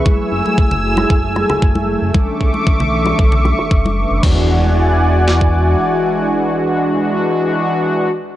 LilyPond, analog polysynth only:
\new Staff \with { instrumentName = "Analog polysynth" } { \time 4/4 \key e \mixolydian \tempo 4 = 115 <fis a e' gis'>8. <fis a e' gis'>8. <fis a e' gis'>2~ <fis a e' gis'>8 | <e cis' d' a'>8. <e cis' d' a'>8. <e cis' d' a'>2 <e cis' d' b'>8 | <e gis d' fis'>1~ | <e gis d' fis'>1 | }